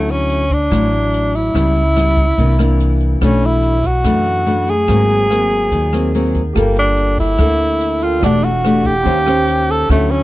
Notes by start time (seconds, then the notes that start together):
Already playing: D2 D3 F#3 A3 C#4 E4
0.09 C#4, closed hi-hat
0.30 closed hi-hat
0.50 D4, kick, closed hi-hat
0.70 A1 A2 F#3 E4, kick, cross-stick, closed hi-hat
0.93 closed hi-hat
1.13 closed hi-hat
1.35 E4, closed hi-hat
1.54 C#2 C#3 G3 B3 E4, kick, cross-stick, closed hi-hat
1.76 closed hi-hat
1.96 G3 B3 E4, cross-stick, closed hi-hat
2.17 kick, closed hi-hat
2.38 C2 C3 E3 A#3 D4, kick, closed hi-hat
2.59 E3 A#3 D4, cross-stick, closed hi-hat
2.80 closed hi-hat
3.00 closed hi-hat
3.21 B1 B2 E3 A3 C#4 D4, kick, cross-stick, closed hi-hat
3.42 E4, closed hi-hat
3.62 closed hi-hat
3.84 F#4, kick, closed hi-hat
4.04 F#2 E3 A3 D4, kick, cross-stick, closed hi-hat
4.25 closed hi-hat
4.46 E3 A3 D4, closed hi-hat
4.67 G#4, closed hi-hat
4.88 G#1 G#2 F#3 A#3 C4, kick, cross-stick, closed hi-hat
5.09 closed hi-hat
5.30 F#3 A#3 C4, cross-stick, closed hi-hat
5.51 closed hi-hat
5.72 D#2 D#3, kick, closed hi-hat
5.93 F#3 A#3 C4, cross-stick, closed hi-hat
6.14 F#3 A#3 C4, closed hi-hat
6.35 kick, closed hi-hat
6.53 G1 G3 A#3 F4 G4 A4, kick, cross-stick, closed hi-hat
6.59 G5
6.76 D4, closed hi-hat
6.97 closed hi-hat
7.18 E4, kick, closed hi-hat
7.38 D2 D3 A#3 A4, kick, cross-stick, closed hi-hat
7.60 closed hi-hat
7.81 closed hi-hat
8.01 F4 A4 A#4 G5, closed hi-hat
8.19 E1 E3 A3 D4 F#4, kick, cross-stick, closed hi-hat
8.23 D4 G4 A4 F#5
8.44 F#4, closed hi-hat
8.64 A3 D4 G4, cross-stick, closed hi-hat
8.85 G4, kick, closed hi-hat
9.03 D#2 D#3 C#4 G4 C5, kick, closed hi-hat
9.07 C5 F5
9.26 C#4 G4 C5, cross-stick, closed hi-hat
9.48 closed hi-hat
9.69 A4, closed hi-hat
9.88 D2 D3 F#3 A3 C#4 E4 F#4 C#5, kick, cross-stick, closed hi-hat
9.93 E5
10.11 C#4, closed hi-hat